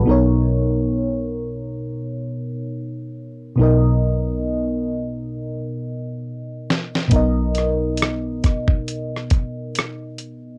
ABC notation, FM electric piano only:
X:1
M:4/4
L:1/8
Q:"Swing 16ths" 1/4=68
K:B
V:1 name="FM electric piano"
[B,,B,DAc]8 | [B,,B,DAd]8 | [B,,B,DAd]8 |]